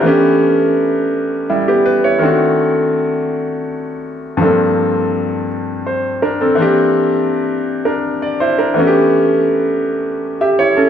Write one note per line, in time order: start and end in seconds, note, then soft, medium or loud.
0.00 2.17 E3 medium
0.00 1.46 A3 medium
0.00 0.21 D4 medium
0.00 0.20 A#4 medium
0.04 1.46 B3 medium
0.04 1.47 C#4 medium
0.04 1.48 G4 medium
1.50 1.67 G3 soft
1.50 1.67 E4 soft
1.68 1.85 B3 medium
1.68 1.85 G4 medium
1.86 2.03 B4 medium
2.04 2.39 E4 soft
2.04 2.38 C#5 medium
2.19 4.34 D#3 medium
2.19 4.35 A3 medium
2.19 4.36 C4 medium
2.23 4.37 D4 medium
2.23 4.38 F#4 medium
4.37 6.53 G2 medium
4.37 6.53 F3 medium
4.37 4.46 A3 soft
4.41 5.47 C4 medium
4.41 5.48 D4 medium
4.41 5.49 A4 medium
4.46 6.55 A#3 medium
5.87 6.21 C5 soft
6.22 6.40 D4 medium
6.22 6.39 A#4 medium
6.41 6.57 C4 soft
6.41 6.75 A4 medium
6.55 8.71 E3 medium
6.55 8.72 A#3 medium
6.55 8.72 C4 medium
6.60 7.66 D4 medium
6.60 7.67 G4 medium
7.85 8.20 D4 soft
7.85 8.20 A#4 medium
8.22 8.39 D5 medium
8.40 8.58 E4 medium
8.40 8.57 C5 medium
8.59 8.93 D4 soft
8.59 8.93 A#4 medium
8.74 10.89 E3 medium
8.74 10.89 A3 medium
8.74 10.89 B3 medium
8.79 9.85 C#4 medium
8.79 8.85 F#4 medium
8.87 9.89 G4 medium
10.41 10.58 G4 soft
10.41 10.58 E5 medium
10.59 10.76 E4 medium
10.59 10.76 C#5 medium
10.77 10.89 C#4 soft
10.77 10.89 A4 medium